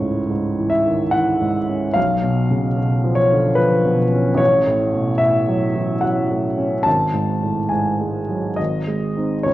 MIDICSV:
0, 0, Header, 1, 2, 480
1, 0, Start_track
1, 0, Key_signature, 4, "minor"
1, 0, Tempo, 845070
1, 649, Tempo, 816327
1, 1131, Time_signature, 3, 2, 24, 8
1, 4009, Tempo, 868307
1, 5489, End_track
2, 0, Start_track
2, 0, Title_t, "Upright piano"
2, 0, Program_c, 0, 0
2, 0, Control_c, 0, 64, 127
2, 0, Note_on_c, 0, 37, 38
2, 0, Note_on_c, 0, 44, 31
2, 0, Note_on_c, 0, 73, 60
2, 4, Note_on_c, 0, 45, 27
2, 106, Note_off_c, 0, 44, 0
2, 168, Note_on_c, 0, 44, 30
2, 171, Note_off_c, 0, 45, 0
2, 328, Note_on_c, 0, 52, 30
2, 395, Note_on_c, 0, 76, 59
2, 404, Note_off_c, 0, 73, 0
2, 427, Note_off_c, 0, 44, 0
2, 488, Note_on_c, 0, 51, 31
2, 583, Note_off_c, 0, 52, 0
2, 632, Note_on_c, 0, 78, 67
2, 640, Note_off_c, 0, 76, 0
2, 647, Note_off_c, 0, 51, 0
2, 648, Note_on_c, 0, 52, 33
2, 809, Note_on_c, 0, 44, 34
2, 907, Note_off_c, 0, 52, 0
2, 969, Note_on_c, 0, 61, 35
2, 1067, Note_off_c, 0, 44, 0
2, 1105, Note_off_c, 0, 37, 0
2, 1115, Note_on_c, 0, 77, 77
2, 1122, Note_off_c, 0, 78, 0
2, 1129, Note_off_c, 0, 61, 0
2, 1129, Note_on_c, 0, 35, 44
2, 1142, Control_c, 0, 64, 0
2, 1241, Control_c, 0, 64, 127
2, 1289, Note_on_c, 0, 47, 35
2, 1452, Note_on_c, 0, 49, 33
2, 1544, Note_off_c, 0, 47, 0
2, 1606, Note_on_c, 0, 47, 36
2, 1609, Note_off_c, 0, 49, 0
2, 1764, Note_on_c, 0, 53, 38
2, 1831, Note_on_c, 0, 73, 72
2, 1837, Note_off_c, 0, 77, 0
2, 1861, Note_off_c, 0, 47, 0
2, 1929, Note_on_c, 0, 50, 35
2, 2019, Note_off_c, 0, 53, 0
2, 2066, Note_on_c, 0, 71, 69
2, 2076, Note_off_c, 0, 73, 0
2, 2082, Note_on_c, 0, 53, 42
2, 2086, Note_off_c, 0, 50, 0
2, 2245, Note_on_c, 0, 47, 38
2, 2315, Note_off_c, 0, 71, 0
2, 2339, Note_off_c, 0, 53, 0
2, 2403, Note_on_c, 0, 61, 37
2, 2500, Note_off_c, 0, 47, 0
2, 2530, Note_on_c, 0, 33, 51
2, 2538, Note_off_c, 0, 35, 0
2, 2549, Note_on_c, 0, 73, 74
2, 2562, Note_off_c, 0, 61, 0
2, 2572, Control_c, 0, 64, 0
2, 2674, Control_c, 0, 64, 127
2, 2722, Note_on_c, 0, 45, 38
2, 2879, Note_on_c, 0, 47, 30
2, 2974, Note_off_c, 0, 45, 0
2, 3022, Note_on_c, 0, 76, 69
2, 3031, Note_off_c, 0, 73, 0
2, 3037, Note_on_c, 0, 45, 34
2, 3039, Note_off_c, 0, 47, 0
2, 3203, Note_on_c, 0, 54, 36
2, 3295, Note_off_c, 0, 45, 0
2, 3362, Note_on_c, 0, 52, 32
2, 3458, Note_off_c, 0, 54, 0
2, 3510, Note_on_c, 0, 78, 53
2, 3511, Note_off_c, 0, 76, 0
2, 3520, Note_off_c, 0, 52, 0
2, 3524, Note_on_c, 0, 54, 35
2, 3684, Note_on_c, 0, 45, 30
2, 3779, Note_off_c, 0, 54, 0
2, 3844, Note_on_c, 0, 61, 29
2, 3944, Note_off_c, 0, 45, 0
2, 3969, Note_off_c, 0, 33, 0
2, 3993, Note_on_c, 0, 81, 73
2, 4004, Note_off_c, 0, 78, 0
2, 4009, Note_on_c, 0, 32, 40
2, 4010, Note_off_c, 0, 61, 0
2, 4018, Control_c, 0, 64, 0
2, 4117, Control_c, 0, 64, 127
2, 4162, Note_on_c, 0, 44, 29
2, 4326, Note_on_c, 0, 45, 25
2, 4416, Note_off_c, 0, 44, 0
2, 4469, Note_on_c, 0, 80, 49
2, 4474, Note_off_c, 0, 81, 0
2, 4483, Note_off_c, 0, 45, 0
2, 4484, Note_on_c, 0, 44, 29
2, 4645, Note_on_c, 0, 56, 29
2, 4741, Note_off_c, 0, 44, 0
2, 4801, Note_on_c, 0, 54, 27
2, 4903, Note_off_c, 0, 56, 0
2, 4944, Note_off_c, 0, 32, 0
2, 4952, Note_on_c, 0, 75, 55
2, 4960, Note_off_c, 0, 80, 0
2, 4964, Note_off_c, 0, 54, 0
2, 4966, Note_on_c, 0, 32, 38
2, 4975, Control_c, 0, 64, 0
2, 5076, Control_c, 0, 64, 127
2, 5123, Note_on_c, 0, 56, 29
2, 5285, Note_on_c, 0, 60, 26
2, 5287, Note_on_c, 0, 63, 29
2, 5382, Note_off_c, 0, 56, 0
2, 5431, Note_off_c, 0, 60, 0
2, 5432, Note_off_c, 0, 63, 0
2, 5433, Note_on_c, 0, 73, 66
2, 5434, Note_off_c, 0, 32, 0
2, 5441, Note_off_c, 0, 75, 0
2, 5447, Note_on_c, 0, 37, 43
2, 5456, Control_c, 0, 64, 0
2, 5489, Note_off_c, 0, 37, 0
2, 5489, Note_off_c, 0, 73, 0
2, 5489, End_track
0, 0, End_of_file